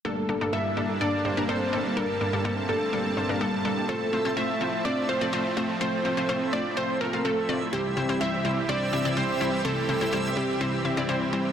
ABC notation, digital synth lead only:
X:1
M:4/4
L:1/16
Q:1/4=125
K:Gdor
V:1 name="Digital synth lead"
A4 e4 d4 c4 | B6 A4 z6 | A4 e4 d2 c6 | c6 d2 c2 B2 A3 z |
G4 e4 d4 c4 | A6 G4 z6 |]